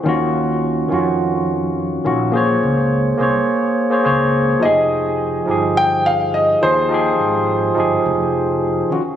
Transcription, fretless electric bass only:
X:1
M:4/4
L:1/8
Q:1/4=105
K:Fm
V:1 name="Fretless electric bass" clef=bass
E,,3 F,,4 B,,,- | B,,, D,,2 C,, z2 D,,2 | F,,,3 G,,,4 E,,- | E,, A,,,2 G,,, F,,,3 z |]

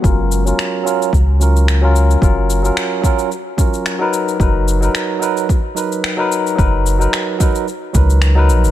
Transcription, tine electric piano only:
X:1
M:4/4
L:1/16
Q:"Swing 16ths" 1/4=110
K:F#
V:1 name="Tine electric piano"
[F,CEA]3 [F,CEA]3 [F,CEA]2 z2 [F,CEA]3 [F,CEA]3 | [F,CEA]3 [F,CEA]3 [F,CEA]2 z2 [F,CEA]3 [F,DAB]3 | [F,DAB]3 [F,DAB]3 [F,DAB]2 z2 [F,DAB]3 [F,DAB]3 | [F,DAB]3 [F,DAB]3 [F,DAB]2 z2 [F,DAB]3 [F,DAB]3 |]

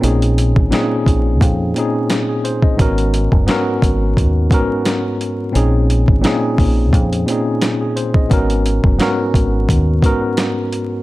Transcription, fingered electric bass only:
X:1
M:4/4
L:1/16
Q:"Swing 16ths" 1/4=87
K:A#phr
V:1 name="Fingered electric bass" clef=bass
A,,,3 G,,, z2 A,,,2 E,,2 z6 | G,,,3 F,,, z2 G,,,2 D,,2 z6 | A,,,3 G,,, z2 A,,,2 E,,2 z6 | G,,,3 F,,, z2 G,,,2 D,,2 z6 |]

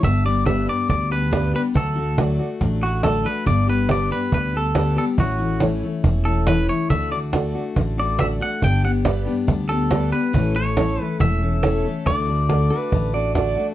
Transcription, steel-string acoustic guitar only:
X:1
M:4/4
L:1/8
Q:1/4=140
K:D
V:1 name="Steel-string acoustic guitar"
[G,,D,G,B,DG] [G,B,DG] [G,,D,G,B,DG] [G,B,DG] [G,B,DG] [G,B,DG] [G,,D,G,B,DG] [G,B,DG] | [D,F,A,DF] [A,DF] [D,F,A,DF] [A,DF] [F,A,DF] [A,DF] [D,F,A,DF] [A,DF] | [G,,D,G,B,DG] [G,B,DG] [G,,D,G,B,DG] [G,B,DG] [G,B,DG] [G,B,DG] [G,,D,G,B,DG] [G,B,DG] | [A,,E,A,CE] [A,CE] [A,,E,A,CE] [A,CE] [E,A,CE] [A,CE] [A,,E,A,CE] [A,CE] |
[D,A,DF] [A,DF] [D,A,DF] [A,DF] [D,A,DF] [A,DF] [D,A,DF] [A,DF] | [G,,D,G,B,DG] [G,B,DG] [G,,D,G,B,DG] [G,B,DG] [G,B,DG] [G,B,DG] [G,,D,G,B,DG] [G,B,DG] | [A,,E,A,CA] [A,CA] [A,,E,A,CA] [A,CA] [E,A,CA] [A,CA] [A,,E,A,CA] [A,CA] | [D,A,DF] [A,DF] [D,A,DF] [A,DF] [D,A,DF] [A,DF] [D,A,DF] [A,DF] |]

